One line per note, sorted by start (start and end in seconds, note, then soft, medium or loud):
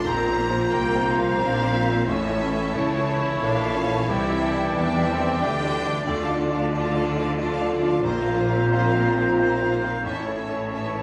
0.00 2.04 F4 medium
0.05 0.27 A#1 medium
0.05 0.72 A#1 medium
0.05 0.72 A#2 loud
0.05 2.04 F3 loud
0.05 2.04 C4 loud
0.05 0.39 C4 medium
0.05 0.73 A#4 medium
0.05 2.04 C5 medium
0.05 0.73 A#5 medium
0.05 2.08 A#5 medium
0.28 0.48 C4 medium
0.28 0.48 F4 medium
0.28 0.49 C5 medium
0.40 1.41 A#3 medium
0.50 0.70 C4 medium
0.50 0.71 F4 medium
0.50 0.71 C5 medium
0.72 1.40 C2 medium
0.72 1.39 C3 medium
0.72 0.93 C4 medium
0.72 0.94 F4 medium
0.72 1.40 A#4 medium
0.72 0.94 C5 medium
0.72 1.07 G5 medium
0.95 1.16 C4 medium
0.95 1.16 F4 medium
0.95 1.16 C5 medium
1.09 2.09 F5 medium
1.18 1.39 C4 medium
1.18 1.39 F4 medium
1.18 1.39 C5 medium
1.40 2.08 A#1 medium
1.40 2.08 A#2 medium
1.40 1.61 C4 medium
1.40 1.74 D4 medium
1.40 1.61 F4 medium
1.40 1.61 C5 medium
1.40 2.08 C5 medium
1.63 1.83 C4 medium
1.63 1.83 F4 medium
1.63 1.83 C5 medium
1.74 2.08 C4 medium
1.85 2.05 C4 medium
1.85 2.05 F4 medium
1.85 2.05 C5 medium
2.07 2.29 A1 medium
2.07 2.74 A1 medium
2.07 2.74 A2 loud
2.07 6.03 E3 medium
2.07 2.75 C#4 medium
2.07 5.76 E4 medium
2.07 4.04 C#5 medium
2.07 3.92 C#5 medium
2.07 2.42 C#5 medium
2.07 2.74 E5 medium
2.07 4.05 A5 medium
2.29 2.50 E4 medium
2.29 2.50 A4 medium
2.29 2.50 C#5 medium
2.43 3.41 A4 medium
2.52 2.72 E4 medium
2.52 2.73 A4 medium
2.52 2.72 C#5 medium
2.74 3.42 C#2 medium
2.74 3.42 C#3 loud
2.74 3.06 E4 medium
2.74 2.95 E4 medium
2.74 2.95 A4 medium
2.74 2.95 C#5 medium
2.74 3.42 C#5 medium
2.97 3.17 E4 medium
2.97 3.18 A4 medium
2.97 3.18 C#5 medium
3.08 3.41 E4 medium
3.19 3.39 E4 medium
3.19 3.39 A4 medium
3.19 3.40 C#5 medium
3.41 4.07 A#1 medium
3.41 4.07 A#2 loud
3.41 3.75 D4 medium
3.41 3.61 E4 medium
3.41 3.62 A4 medium
3.41 4.07 A4 medium
3.41 3.62 C#5 medium
3.41 4.09 F5 medium
3.64 3.84 E4 medium
3.64 3.84 A4 medium
3.64 3.84 C#5 medium
3.75 4.08 C#4 medium
3.86 4.06 E4 medium
3.86 4.06 A4 medium
3.86 4.06 C#5 medium
4.07 4.29 C2 medium
4.07 4.74 C2 loud
4.07 4.73 C3 loud
4.07 8.00 D4 loud
4.07 4.75 E4 medium
4.07 4.41 G4 medium
4.07 7.72 D5 loud
4.07 4.74 E5 medium
4.07 5.83 G5 loud
4.29 4.50 E4 medium
4.29 4.50 G4 medium
4.29 4.50 D5 medium
4.41 5.40 A4 medium
4.53 4.72 E4 medium
4.53 4.72 G4 medium
4.53 4.73 D5 medium
4.74 5.39 E2 medium
4.74 5.39 E3 loud
4.74 5.08 D4 medium
4.74 4.95 E4 medium
4.74 4.95 G4 medium
4.74 4.95 D5 medium
4.74 5.39 E5 medium
4.97 5.16 E4 medium
4.97 5.17 G4 medium
4.97 5.17 D5 medium
5.07 5.40 C4 loud
5.19 5.38 E4 medium
5.19 5.39 G4 medium
5.19 5.39 D5 medium
5.40 6.05 D2 medium
5.40 6.04 D3 loud
5.40 6.06 D4 medium
5.40 5.61 E4 medium
5.40 6.05 G4 medium
5.40 5.61 G4 medium
5.40 5.61 D5 medium
5.40 6.06 G5 medium
5.63 5.82 E4 medium
5.63 5.83 G4 medium
5.63 5.83 D5 medium
5.85 6.04 E4 medium
5.85 6.04 G4 medium
5.85 6.04 D5 medium
6.05 8.00 D2 medium
6.05 6.28 D2 medium
6.05 8.00 D3 loud
6.05 9.88 F3 loud
6.05 6.21 A3 medium
6.05 10.00 F4 loud
6.05 6.22 F4 medium
6.05 6.21 D5 medium
6.05 8.00 A5 loud
6.22 6.39 D4 medium
6.22 6.39 A4 medium
6.22 6.38 F5 medium
6.29 6.48 D4 medium
6.29 6.48 F4 medium
6.29 6.48 D5 medium
6.37 6.55 A3 medium
6.37 6.55 F4 medium
6.37 6.54 D5 medium
6.50 6.69 D4 medium
6.50 6.69 F4 medium
6.50 6.70 D5 medium
6.55 6.71 D4 medium
6.55 6.72 A4 medium
6.55 6.71 F5 medium
6.70 6.87 A3 medium
6.70 6.91 D4 medium
6.70 6.91 F4 medium
6.70 6.87 F4 medium
6.70 6.86 D5 medium
6.70 6.91 D5 medium
6.87 7.05 D4 medium
6.87 7.04 A4 medium
6.87 7.03 F5 medium
6.94 7.13 D4 medium
6.94 7.13 F4 medium
6.94 7.14 D5 medium
7.03 7.21 A3 medium
7.03 7.21 F4 medium
7.03 7.20 D5 medium
7.16 7.35 D4 medium
7.16 7.35 F4 medium
7.16 7.36 D5 medium
7.16 7.36 F5 medium
7.21 7.37 D4 medium
7.21 7.37 A4 medium
7.37 7.53 A3 medium
7.37 7.57 D4 medium
7.37 7.53 F4 medium
7.37 7.57 F4 medium
7.37 7.52 D5 medium
7.37 7.58 D5 medium
7.54 7.70 D4 medium
7.54 7.71 A4 medium
7.54 7.70 F5 medium
7.60 7.79 D4 medium
7.60 7.80 F4 medium
7.60 7.80 D5 medium
7.70 7.87 A3 medium
7.70 7.87 F4 medium
7.70 7.87 D5 medium
7.82 8.02 D4 medium
7.82 8.02 F4 medium
7.82 8.02 D5 medium
7.86 8.03 D4 medium
7.86 8.03 A4 medium
7.86 8.03 F5 medium
8.03 8.26 A#1 medium
8.03 10.04 A#1 loud
8.03 10.04 A#2 loud
8.03 8.19 A#3 medium
8.03 9.88 C4 loud
8.03 8.19 F4 medium
8.03 8.19 C5 medium
8.03 10.00 C5 loud
8.03 10.04 A#5 medium
8.20 8.37 C4 medium
8.20 8.37 A#4 medium
8.20 8.37 F5 medium
8.27 8.47 C4 medium
8.27 8.47 F4 medium
8.27 8.47 F5 medium
8.36 8.53 A#3 medium
8.36 8.53 F4 medium
8.36 8.54 C5 medium
8.49 8.69 C4 medium
8.49 8.70 C4 medium
8.49 8.69 F4 medium
8.49 8.69 F5 medium
8.49 8.70 F5 medium
8.53 8.70 A#4 medium
8.69 8.86 A#3 medium
8.69 8.92 C4 medium
8.69 8.85 F4 medium
8.69 8.92 F4 medium
8.69 8.86 C5 medium
8.69 8.92 F5 medium
8.87 9.04 C4 medium
8.87 9.04 A#4 medium
8.87 9.05 F5 medium
8.94 9.14 C4 medium
8.94 9.14 F4 medium
8.94 9.14 F5 medium
9.03 9.20 A#3 medium
9.03 9.21 F4 medium
9.03 9.22 C5 medium
9.17 9.36 C4 medium
9.17 9.37 C4 medium
9.17 9.37 F4 medium
9.17 9.37 A#4 medium
9.17 9.37 F5 medium
9.22 9.38 F5 medium
9.38 9.53 A#3 medium
9.38 9.58 C4 medium
9.38 9.53 F4 medium
9.38 9.58 F4 medium
9.38 9.53 C5 medium
9.38 9.59 F5 medium
9.54 9.71 C4 medium
9.54 9.71 A#4 medium
9.54 9.72 F5 medium
9.61 9.80 C4 medium
9.61 9.81 F4 medium
9.61 9.81 F5 medium
9.70 9.87 A#3 medium
9.70 9.88 F4 medium
9.70 9.87 C5 medium
9.83 10.02 C4 medium
9.83 10.03 C4 medium
9.83 10.03 F4 medium
9.83 10.03 F5 medium
9.87 10.04 A#4 medium
10.02 11.03 A1 medium
10.02 10.25 A1 medium
10.02 11.03 A2 medium
10.02 11.03 E3 medium
10.02 10.18 C#4 medium
10.02 11.03 C#4 medium
10.02 11.03 E4 medium
10.02 10.19 A4 medium
10.02 11.03 C#5 medium
10.02 10.19 E5 medium
10.02 11.03 A5 medium
10.19 10.36 E4 medium
10.19 10.37 C#5 medium
10.27 10.47 E4 medium
10.27 10.47 A4 medium
10.27 10.47 C#5 medium
10.36 10.53 C#4 medium
10.36 10.53 A4 medium
10.36 10.54 E5 medium
10.48 10.68 E4 medium
10.48 10.69 A4 medium
10.48 10.69 C#5 medium
10.52 10.70 E4 medium
10.52 10.70 C#5 medium
10.52 10.71 C#5 medium
10.69 10.86 C#4 medium
10.69 10.92 E4 soft
10.69 10.86 A4 medium
10.69 10.92 A4 medium
10.69 10.92 C#5 medium
10.69 10.87 E5 medium
10.86 11.03 E4 medium
10.86 11.03 C#5 medium
10.94 11.03 E4 medium
10.94 11.03 A4 soft
10.94 11.03 C#5 medium